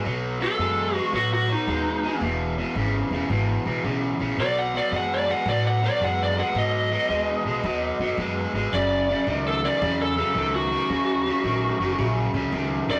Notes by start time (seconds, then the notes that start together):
0.04 B1 B2 F#3
0.40 B2 F#3 A4
0.59 F#2 B2 G#3
0.94 B2 G#3 F#4
1.12 A2 B2 F#3 F#4
1.34 F#4
1.49 B2 F#3 D#4
1.67 D#2 B2 G#3
2.03 B2 G#3
2.21 E1 E2 B2
2.57 E2 B2
2.75 G#1 E2 C#3
3.11 E1 E2 C#3
3.30 G#1 E2 B2
3.65 B1 E2 B2
3.84 B1 E2 C#3
4.19 A#1 E2 C#3
4.37 B1 B2 F#3 D5
4.59 F#5
4.74 B2 F#3 D5
4.92 F#2 B2 G#3
4.96 F#5
5.14 D5
5.29 B2 G#3 F#5
5.46 A2 B2 F#3 D5
5.67 F#5
5.83 B2 F#3 D5
6.01 F#2 B2 G#3 F#5
6.23 D5
6.37 B2 G#3 F#5
6.55 G#2 B2 F#3 D#5
6.92 B2 F#3
7.09 D#2 B2 G#3
7.45 B1 B2 G#3
7.64 D#2 B2 F#3
7.99 F#2 B2 F#3
8.18 F#2 B2 G#3
8.53 G#1 B2 G#3
8.73 F#1 F#2 C#3 D5
9.09 F#2 C#3
9.27 C#2 F#2 D#3
9.48 A4
9.63 F#2 D#3 D5
9.81 E2 F#2 C#3
10.01 A4
10.17 F#2 C#3
10.35 C#2 F#2 D#3
10.55 F#4
10.71 F#2 D#3
10.89 D#2 F#2 C#3
11.26 F#2 C#3
11.44 A#1 F#2 D#3
11.79 F#1 F#2 D#3
11.98 A#1 F#2 C#3
12.34 C#2 F#2 C#3
12.52 C#2 F#2 D#3
12.88 D#2 F#2 D#3 D5